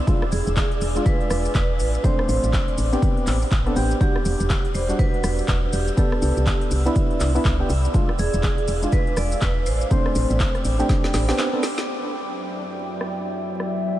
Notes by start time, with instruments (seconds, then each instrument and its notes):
Already playing: ambient pad E6
0.07 synth stab G#3 D4 F4, ambient pad D5 F5 G#5, kick, closed hi-hat, shaker
0.22 cross-stick
0.32 fm bass E1, vibraphone G#4, open hi-hat, shaker
0.47 fm bass E1, closed hi-hat, shaker
0.57 kick, clap, closed hi-hat, shaker
0.72 closed hi-hat
0.81 fm bass E1, open hi-hat, shaker
0.95 synth stab G#3 D4 F4, shaker
1.06 vibraphone B4, kick, closed hi-hat, shaker
1.21 closed hi-hat
1.30 fm bass E1, cross-stick, open hi-hat, shaker
1.45 shaker
1.55 fm bass E1, vibraphone B4, kick, clap, closed hi-hat, shaker
1.79 fm bass A1, ambient pad B5 D6, open hi-hat, shaker
1.94 closed hi-hat, shaker
2.03 synth stab A3 C4 D4 C5, vibraphone C5, kick, closed hi-hat, shaker
2.19 cross-stick
2.29 fm bass A1, open hi-hat, shaker
2.43 fm bass A1, closed hi-hat, shaker
2.53 kick, clap, closed hi-hat, shaker
2.68 closed hi-hat
2.78 fm bass A1, open hi-hat, shaker
2.92 synth stab B3 C4 D4 G4, closed hi-hat, shaker
3.02 kick, closed hi-hat, shaker
3.17 closed hi-hat
3.27 fm bass A1, clap, open hi-hat, shaker
3.42 shaker
3.51 fm bass A1, kick, clap, closed hi-hat, shaker
3.66 synth stab B3 C4 D4 A4, closed hi-hat
3.76 fm bass A1, synth stab B3 C4 D4 G4, vibraphone G4, open hi-hat, shaker
3.91 shaker
4.00 synth stab G3 D4 F#4, vibraphone G4, ambient pad D5 F#5 E6, kick, closed hi-hat, shaker
4.16 cross-stick
4.25 fm bass E1, open hi-hat, shaker
4.40 fm bass E1, closed hi-hat, shaker
4.50 kick, clap, closed hi-hat, shaker
4.65 closed hi-hat
4.75 fm bass E1, vibraphone C5, open hi-hat, shaker
4.88 synth stab G3 D4 F#4, closed hi-hat, shaker
4.99 vibraphone B4, kick, closed hi-hat, shaker
5.14 closed hi-hat
5.24 fm bass E1, cross-stick, open hi-hat, shaker
5.38 shaker
5.48 fm bass E1, kick, clap, closed hi-hat, shaker
5.73 fm bass E1, vibraphone G4, open hi-hat, shaker
5.88 shaker
5.97 synth stab B3 D4 A4, vibraphone G4, ambient pad D5 B5 C6, kick, closed hi-hat, shaker
6.12 cross-stick
6.22 fm bass C2, open hi-hat, shaker
6.37 fm bass C2, closed hi-hat, shaker
6.47 kick, clap, closed hi-hat, shaker
6.61 closed hi-hat
6.71 fm bass C2, open hi-hat, shaker
6.86 synth stab B3 D4 E4, shaker
6.96 kick, closed hi-hat, shaker
7.11 closed hi-hat
7.20 fm bass C2, clap, open hi-hat, shaker
7.35 synth stab B3 D4 E4, shaker
7.45 fm bass C2, kick, clap, closed hi-hat, shaker
7.59 synth stab B3 D4 G4
7.70 fm bass C2, open hi-hat, shaker
7.84 closed hi-hat, shaker
7.94 synth stab G#3 D4 F4, ambient pad F5 G#5, kick, closed hi-hat, shaker
8.09 cross-stick
8.19 fm bass E1, vibraphone G#4, open hi-hat, shaker
8.34 fm bass E1, closed hi-hat, shaker
8.43 kick, clap, closed hi-hat, shaker
8.58 closed hi-hat
8.68 fm bass E1, open hi-hat, shaker
8.82 synth stab G#3 D4 F4, closed hi-hat, shaker
8.92 vibraphone B4, kick, closed hi-hat, shaker
9.07 closed hi-hat
9.17 fm bass E1, vibraphone D5, cross-stick, open hi-hat, shaker
9.32 shaker
9.41 fm bass E1, vibraphone B4, kick, clap, closed hi-hat, shaker
9.66 fm bass A1, vibraphone C5, ambient pad G5 B5 D6, open hi-hat, shaker
9.81 closed hi-hat, shaker
9.90 synth stab A3 C4 D4 C5, kick, closed hi-hat, shaker
10.06 cross-stick
10.15 fm bass A1, open hi-hat, shaker
10.30 fm bass A1, closed hi-hat, shaker
10.40 kick, clap, closed hi-hat, shaker
10.55 cross-stick, closed hi-hat
10.65 fm bass A1, open hi-hat, shaker
10.79 synth stab A3 C4 D4 G4, closed hi-hat, shaker
10.89 kick, snare, closed hi-hat, shaker
11.04 snare, closed hi-hat
11.14 fm bass A1, snare, open hi-hat, shaker
11.28 synth stab B3 C4 D4 G4, snare, shaker
11.38 snare, clap, closed hi-hat, shaker
11.53 synth stab B3 C4 D4 A4
11.63 snare, open hi-hat, shaker
11.78 snare, shaker
11.88 ambient pad F#3 D5 E5 G5
13.01 cross-stick
13.60 cross-stick
13.84 ambient pad D4 B4 C5